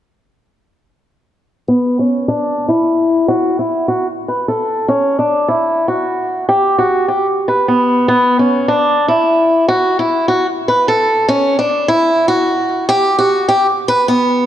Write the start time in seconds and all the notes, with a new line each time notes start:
1.68 B3
1.99 C#4
2.28 D4
2.69 E4
3.28 F#4
3.59 E4
3.88 F#4
4.28 B4
4.48 A4
4.88 C#4
5.19 D4
5.48 E4
5.88 F#4
6.49 G4
6.78 F#4
7.08 G4
7.48 B4
7.68 B3
8.08 B3
8.39 C#4
8.68 D4
9.08 E4
9.68 F#4
9.99 E4
10.28 F#4
10.68 B4
10.88 A4
11.28 C#4
11.59 D4
11.88 E4
12.28 F#4
12.89 G4
13.19 F#4
13.49 G4
13.88 B4
14.08 B3